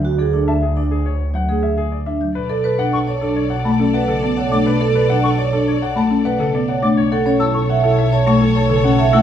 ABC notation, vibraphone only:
X:1
M:4/4
L:1/16
Q:1/4=104
K:Dlyd
V:1 name="Vibraphone"
F G D z2 D z4 G z3 D z | [K:Bm] z A B D z c D z4 B z2 c D | z A B D z c D z4 B z2 c D | z A c E z e E z c z2 c z2 e E |]